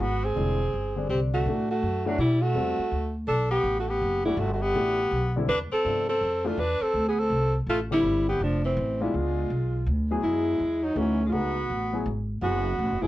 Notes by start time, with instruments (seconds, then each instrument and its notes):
0.00 upright bass G#1, tenor saxophone B3, alto saxophone F#4
0.24 tenor saxophone C4, alto saxophone G#4
0.36 upright bass E1, grand piano D3 G3 C4 E4
0.73 upright bass G1
0.96 grand piano D3 G3 C4 D4
1.09 upright bass C2, tenor saxophone C4, alto saxophone G4
1.34 tenor saxophone A3, alto saxophone F#4
1.46 upright bass A2, grand piano E3 A3 D4 F#4
1.70 tenor saxophone A3, alto saxophone F#4
1.83 upright bass F#2
2.06 grand piano E3 A3 D4 F#4, tenor saxophone F#3, alto saxophone D4
2.19 upright bass B2, tenor saxophone G3, alto saxophone E4
2.42 tenor saxophone A3, alto saxophone F#4
2.55 upright bass E2, grand piano G3 C4 F#4 A4
2.79 muted upright bass stroke
2.91 upright bass D2
3.28 upright bass B1, tenor saxophone D4, alto saxophone A4
3.51 tenor saxophone B3, alto saxophone G4
3.64 upright bass A1
3.79 tenor saxophone A3, alto saxophone F#4
3.89 tenor saxophone B3, alto saxophone G4
4.01 upright bass F#1
4.25 grand piano E3 A3 D4 F#4, tenor saxophone G3, alto saxophone E4
4.37 upright bass G1, tenor saxophone A3, alto saxophone F#4
4.53 tenor saxophone A3, alto saxophone F#4
4.61 tenor saxophone B3, alto saxophone G4
4.75 upright bass A1, grand piano E3 A3 D4 F#4
5.11 upright bass B1
5.36 grand piano D3 G3 C4 E4
5.48 upright bass E2, tenor saxophone D4, alto saxophone B4
5.71 tenor saxophone C4, alto saxophone A4, muted upright bass stroke
5.84 upright bass G2, grand piano C3 F3 B3 D4
6.09 tenor saxophone C4, alto saxophone A4
6.21 upright bass F2
6.44 grand piano E3 A3 D4 F4, tenor saxophone A3, alto saxophone F4
6.58 upright bass E2, tenor saxophone D4, alto saxophone B4
6.81 tenor saxophone C4, alto saxophone A4, muted upright bass stroke
6.94 upright bass D2
7.09 tenor saxophone B3, alto saxophone G#4
7.19 tenor saxophone C4, alto saxophone A4
7.30 upright bass C2
7.66 upright bass A1, tenor saxophone A3, alto saxophone F4
7.91 grand piano D3 G3 C4 E4, tenor saxophone G3, alto saxophone E4
8.03 upright bass G1
8.29 tenor saxophone B3, alto saxophone G4
8.40 upright bass F1, tenor saxophone F3, alto saxophone D4
8.64 tenor saxophone E3, alto saxophone C4
8.77 upright bass A1
9.00 tenor saxophone G3, grand piano G#3 B3 D4 F4, alto saxophone E4
9.14 upright bass C#2, tenor saxophone G#3, alto saxophone F4
9.50 upright bass B1
9.87 upright bass D2
10.11 grand piano F#3 B3 E4 G#4
10.22 upright bass F#2, tenor saxophone G#3, alto saxophone E4
10.60 upright bass E2
10.83 tenor saxophone F#3, alto saxophone D#4
10.95 upright bass D2, tenor saxophone E3, grand piano E3 A3 D#4 F#4, alto saxophone C#4
11.26 tenor saxophone G#3, alto saxophone F4
11.32 upright bass C#2, grand piano A3 D#4 G#4 B4, tenor saxophone B3, alto saxophone F#4
11.70 upright bass A1
11.93 grand piano F#3 B3 E4 G#4
12.06 upright bass G#1
12.42 upright bass F#1, grand piano F#3 B3 E4 G#4, tenor saxophone B3, alto saxophone F#4
12.79 upright bass A1
12.91 upright bass F#1
13.02 upright bass E1, grand piano F#3 B3 E4 G#4, tenor saxophone G#3, alto saxophone E4